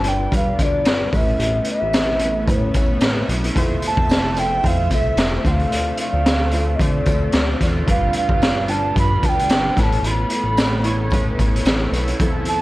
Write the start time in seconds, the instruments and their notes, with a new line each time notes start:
Already playing: analog synth bass G1, ambient pad D3 G3 B3 F4, synth keys G3 D4 F4 B4
0.01 clean electric guitar G3 D4 F4 B4, synth keys G3 D4, closed hi-hat, tambourine
0.06 synth keys F4 D5, ocarina G5
0.31 analog synth bass G2, synth keys G3 D4 F4 B4, kick, closed hi-hat, tambourine
0.36 ocarina F5
0.57 analog synth bass D2, clean electric guitar G3 D4 F4, kick, closed hi-hat, tambourine
0.61 clean electric guitar B4, ocarina D5
0.85 analog synth bass G1, clean electric guitar G3 D4 F4 B4, snare, closed hi-hat, tambourine
1.11 analog synth bass A1, ambient pad C#3 A3 B3 E5, synth keys A3 C#4 E4 B4, clean electric guitar A3 C#4 E4 B4, kick, open hi-hat, tambourine
1.16 ocarina E5
1.39 analog synth bass A1, closed hi-hat, tambourine
1.64 closed hi-hat, tambourine
1.70 ocarina E5
1.81 analog synth bass A1, clean electric guitar C#4 E4 B4
1.93 snare, closed hi-hat, tambourine
2.19 synth keys A3 C#4 E4 B4, clean electric guitar A3 C#4 E4, closed hi-hat, tambourine
2.24 clean electric guitar B4
2.45 analog synth bass A2, synth keys A3 C#4 E4 B4, kick, closed hi-hat, tambourine
2.49 ocarina C#5
2.74 analog synth bass A1, clean electric guitar A3 C#4 E4 B4, kick, closed hi-hat, tambourine
3.00 analog synth bass A1, clean electric guitar A3 C#4 E4 B4, snare, closed hi-hat, tambourine
3.29 analog synth bass B1, closed hi-hat, tambourine
3.42 clean electric guitar E4 B4, closed hi-hat
3.46 clean electric guitar C#4
3.55 analog synth bass F1, ambient pad C3 F3 A3, clean electric guitar F3 A3 C4 F4 A4 E5, synth keys A3 E4 F4 C5, kick, closed hi-hat
3.82 closed hi-hat, tambourine
3.87 ocarina A5
3.97 analog synth bass F1, clean electric guitar C4 F4 A4 E5, kick
4.09 snare, closed hi-hat, tambourine
4.35 synth keys A3 E4 F4 C5, clean electric guitar C4 F4 A4, ocarina G5, closed hi-hat, tambourine
4.39 clean electric guitar E5
4.63 analog synth bass F2, synth keys A3 E4 F4 C5, kick, closed hi-hat, tambourine
4.67 ocarina F5
4.90 analog synth bass C2, clean electric guitar C4 F4 A4, ocarina E5, kick, closed hi-hat, tambourine
4.94 clean electric guitar E5
5.16 analog synth bass F1, clean electric guitar C4 F4 A4, snare, closed hi-hat, tambourine
5.21 clean electric guitar E5
5.43 analog synth bass D2, clean electric guitar D3 A3 C4 F4 A4 D5, ambient pad D3 C4 F4, synth keys A3 D4 F4 C5, kick, snare, closed hi-hat, tambourine
5.47 ocarina F5 G5
5.59 closed hi-hat
5.71 analog synth bass D2, closed hi-hat, tambourine
5.97 ocarina F5, closed hi-hat, tambourine
6.13 analog synth bass D2, clean electric guitar C4 F4 A4 D5
6.26 snare, closed hi-hat, tambourine
6.52 synth keys A3 D4 F4 C5, clean electric guitar C4 F4 A4, closed hi-hat, tambourine
6.57 clean electric guitar D5
6.76 analog synth bass D3, synth keys A3 D4, ocarina E5, kick
6.80 synth keys F4 C5, ocarina D5, closed hi-hat, tambourine
7.06 analog synth bass D2, clean electric guitar C4 F4 A4, kick, closed hi-hat, tambourine
7.10 clean electric guitar D5
7.32 analog synth bass D2, clean electric guitar C4 F4 A4, snare, closed hi-hat, tambourine
7.38 clean electric guitar D5
7.61 analog synth bass E2, kick, snare, closed hi-hat, tambourine
7.76 clean electric guitar C4 F4 A4 D5
7.86 analog synth bass G1, synth keys G3 D4 F4 B4, clean electric guitar G3 D4 F4 B4, ambient pad G3 B3, kick, closed hi-hat
7.90 clean electric guitar D5, ocarina F5
8.13 ocarina F5, closed hi-hat, tambourine
8.29 analog synth bass G1, clean electric guitar B4 D5, kick
8.33 clean electric guitar F4
8.42 snare, closed hi-hat, tambourine
8.68 synth keys G3 D4 F4 B4, clean electric guitar D4 F4 B4, ocarina A5, closed hi-hat, tambourine
8.72 clean electric guitar D5
8.95 analog synth bass G2, synth keys G3 D4 F4 B4, ocarina B5, kick, closed hi-hat, tambourine
9.22 analog synth bass D2, clean electric guitar D4 F4 B4 D5, ocarina A5, kick, closed hi-hat, tambourine
9.29 ocarina G5
9.39 closed hi-hat
9.48 analog synth bass G1, clean electric guitar D4 F4 B4, snare, closed hi-hat, tambourine
9.52 clean electric guitar D5
9.75 analog synth bass A1, ambient pad C#3 A3 E4, clean electric guitar A3 B3 E4 A4 C#5, synth keys A3 C#4 E4 B4, kick, snare, closed hi-hat, tambourine
9.80 ocarina A5 B5
9.92 closed hi-hat
10.03 analog synth bass A1, ocarina C6, closed hi-hat, tambourine
10.11 ocarina B5
10.30 closed hi-hat, tambourine
10.44 analog synth bass A1, clean electric guitar A4 C#5
10.48 clean electric guitar E4
10.57 snare, closed hi-hat, tambourine
10.83 synth keys A3 C#4 E4 C#5, clean electric guitar B3 E4 A4, closed hi-hat, tambourine
10.87 clean electric guitar C#5
11.11 analog synth bass A2, synth keys A3 C#4 E4 B4, kick, closed hi-hat, tambourine
11.37 analog synth bass A1, clean electric guitar B3 E4 A4, kick, closed hi-hat, tambourine
11.42 clean electric guitar C#5
11.56 closed hi-hat
11.63 analog synth bass A1, clean electric guitar B3 E4 A4, snare, closed hi-hat, tambourine
11.68 clean electric guitar C#5
11.92 analog synth bass B1, closed hi-hat, tambourine
12.05 clean electric guitar A4 C#5, closed hi-hat
12.10 clean electric guitar E4
12.19 analog synth bass F2, clean electric guitar F3 C4 E4 A4, synth keys F3 C4 E4 A4, kick, closed hi-hat, tambourine
12.45 ocarina A5, closed hi-hat, tambourine